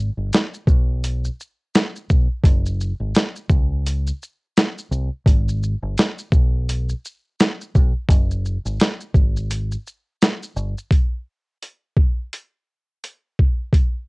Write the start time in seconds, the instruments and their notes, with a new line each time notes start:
0.17 fingered electric bass G1
0.33 snare, closed hi-hat, shaker
0.54 shaker
0.67 fingered electric bass B1, kick, shaker
1.04 closed hi-hat, shaker
1.25 shaker
1.40 shaker
1.75 snare, closed hi-hat, shaker
1.96 shaker
2.10 fingered electric bass B1, kick, shaker
2.44 fingered electric bass F#1, kick, closed hi-hat, shaker
2.66 shaker
2.81 shaker
3.00 fingered electric bass G#1
3.15 snare, closed hi-hat, shaker
3.36 shaker
3.49 fingered electric bass C#2, kick, shaker
3.86 closed hi-hat, shaker
4.07 shaker
4.22 shaker
4.57 snare, closed hi-hat, shaker
4.78 shaker
4.91 fingered electric bass C2, shaker
5.26 fingered electric bass G#1, kick, closed hi-hat, shaker
5.49 shaker
5.63 shaker
5.82 fingered electric bass G1
5.98 snare, closed hi-hat, shaker
6.18 shaker
6.32 fingered electric bass B1, kick, shaker
6.69 closed hi-hat, shaker
6.89 shaker
7.05 shaker
7.40 snare, closed hi-hat, shaker
7.61 shaker
7.75 fingered electric bass B1, kick, shaker
8.09 fingered electric bass F#1, kick, closed hi-hat, shaker
8.31 shaker
8.45 shaker
8.65 fingered electric bass G#1, shaker
8.80 snare, closed hi-hat, shaker
9.00 shaker
9.14 fingered electric bass G#1, kick, shaker
9.37 shaker
9.51 closed hi-hat, shaker
9.71 shaker
9.87 shaker
10.22 snare, closed hi-hat, shaker
10.43 shaker
10.56 fingered electric bass G1, shaker
10.78 shaker
10.91 kick, closed hi-hat
11.63 closed hi-hat
11.97 kick
12.33 closed hi-hat
13.04 closed hi-hat
13.39 kick
13.73 kick, closed hi-hat